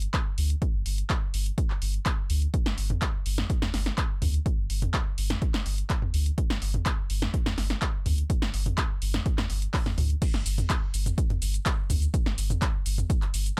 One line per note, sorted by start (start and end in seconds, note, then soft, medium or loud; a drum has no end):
0.02 closed hi-hat soft
0.14 kick loud
0.14 clap loud
0.14 closed hi-hat medium
0.38 0.55 D2 medium
0.38 open hi-hat loud
0.50 closed hi-hat soft
0.62 kick loud
0.62 closed hi-hat medium
0.74 0.82 G1 medium
0.86 1.03 G1 loud
0.86 open hi-hat loud
0.98 closed hi-hat soft
1.10 kick loud
1.10 clap loud
1.10 closed hi-hat medium
1.34 1.51 G1 medium
1.34 open hi-hat loud
1.46 closed hi-hat soft
1.58 kick loud
1.58 closed hi-hat medium
1.70 clap soft
1.82 1.99 G1 medium
1.82 open hi-hat loud
1.94 closed hi-hat soft
2.06 kick loud
2.06 clap loud
2.06 closed hi-hat medium
2.30 2.47 D2 loud
2.30 open hi-hat loud
2.42 closed hi-hat soft
2.54 kick loud
2.54 closed hi-hat medium
2.66 2.74 G1 medium
2.66 snare medium
2.78 2.95 G1 loud
2.78 open hi-hat loud
2.90 closed hi-hat soft
2.90 mid tom medium
3.02 kick medium
3.02 clap loud
3.02 closed hi-hat medium
3.26 3.43 G1 medium
3.26 open hi-hat loud
3.38 snare medium
3.38 mid tom medium
3.50 kick loud
3.50 closed hi-hat medium
3.62 snare medium
3.62 mid tom medium
3.74 3.91 G1 medium
3.74 snare medium
3.74 open hi-hat loud
3.86 snare medium
3.98 kick loud
3.98 clap loud
3.98 closed hi-hat medium
4.22 4.39 D2 medium
4.22 mid tom medium
4.22 open hi-hat medium
4.34 closed hi-hat soft
4.46 kick loud
4.46 closed hi-hat medium
4.58 4.66 G1 medium
4.70 4.87 G1 loud
4.70 open hi-hat loud
4.82 closed hi-hat medium
4.82 mid tom medium
4.94 kick medium
4.94 clap loud
4.94 closed hi-hat medium
5.18 5.35 G1 medium
5.18 open hi-hat medium
5.30 snare medium
5.30 mid tom medium
5.42 kick loud
5.42 closed hi-hat medium
5.54 snare medium
5.54 clap soft
5.66 5.83 G1 medium
5.66 open hi-hat medium
5.78 closed hi-hat soft
5.90 kick loud
5.90 clap loud
5.90 closed hi-hat medium
6.02 mid tom medium
6.14 6.31 D2 medium
6.14 open hi-hat loud
6.26 closed hi-hat soft
6.38 kick loud
6.38 closed hi-hat medium
6.50 6.58 G1 medium
6.50 snare medium
6.62 6.79 G1 loud
6.62 open hi-hat loud
6.74 closed hi-hat medium
6.74 mid tom medium
6.86 kick medium
6.86 clap loud
6.86 closed hi-hat medium
7.10 7.27 G1 medium
7.10 open hi-hat loud
7.22 snare medium
7.22 mid tom medium
7.34 kick loud
7.34 closed hi-hat medium
7.46 snare medium
7.46 mid tom medium
7.58 7.75 G1 medium
7.58 snare medium
7.58 open hi-hat loud
7.70 snare medium
7.70 closed hi-hat medium
7.82 kick loud
7.82 clap loud
7.82 closed hi-hat medium
8.06 8.23 D2 medium
8.06 mid tom medium
8.06 open hi-hat medium
8.18 closed hi-hat medium
8.30 kick loud
8.30 closed hi-hat medium
8.42 8.50 G1 loud
8.42 snare medium
8.54 8.71 G1 loud
8.54 open hi-hat loud
8.66 closed hi-hat medium
8.66 mid tom medium
8.78 kick medium
8.78 clap loud
8.78 closed hi-hat medium
9.02 9.19 G1 medium
9.02 open hi-hat medium
9.14 snare medium
9.14 closed hi-hat medium
9.14 mid tom medium
9.26 kick loud
9.26 closed hi-hat medium
9.38 snare medium
9.38 clap soft
9.38 mid tom medium
9.50 9.67 G1 medium
9.50 open hi-hat loud
9.62 closed hi-hat medium
9.74 kick loud
9.74 clap loud
9.74 open hi-hat medium
9.86 snare medium
9.86 mid tom medium
9.98 10.15 D2 loud
9.98 open hi-hat medium
9.98 mid tom medium
10.10 closed hi-hat medium
10.22 kick loud
10.22 closed hi-hat medium
10.22 crash loud
10.22 shaker soft
10.34 10.42 G1 loud
10.34 snare medium
10.46 10.63 G1 loud
10.46 open hi-hat loud
10.46 shaker medium
10.58 closed hi-hat medium
10.58 mid tom medium
10.58 shaker soft
10.70 kick loud
10.70 clap loud
10.70 closed hi-hat medium
10.70 shaker soft
10.94 11.11 G1 medium
10.94 open hi-hat loud
10.94 shaker medium
11.06 closed hi-hat medium
11.06 mid tom medium
11.06 shaker soft
11.18 kick loud
11.18 closed hi-hat medium
11.18 shaker soft
11.30 closed hi-hat soft
11.30 mid tom medium
11.42 11.59 G1 medium
11.42 open hi-hat loud
11.42 shaker medium
11.54 closed hi-hat medium
11.54 shaker soft
11.66 kick loud
11.66 clap loud
11.66 closed hi-hat medium
11.66 shaker soft
11.90 12.07 D2 medium
11.90 mid tom medium
11.90 open hi-hat loud
11.90 shaker medium
12.02 closed hi-hat medium
12.02 shaker soft
12.14 kick loud
12.14 closed hi-hat medium
12.14 shaker soft
12.26 12.34 G1 loud
12.26 snare medium
12.38 12.55 G1 loud
12.38 open hi-hat loud
12.38 shaker medium
12.50 closed hi-hat medium
12.50 mid tom loud
12.50 shaker soft
12.62 kick loud
12.62 clap loud
12.62 closed hi-hat medium
12.62 shaker soft
12.86 13.03 G1 medium
12.86 open hi-hat loud
12.86 shaker medium
12.98 mid tom medium
12.98 shaker soft
13.10 kick loud
13.10 closed hi-hat medium
13.10 shaker soft
13.22 clap soft
13.22 closed hi-hat soft
13.34 13.51 G1 medium
13.34 open hi-hat loud
13.34 shaker medium
13.46 closed hi-hat medium
13.46 shaker soft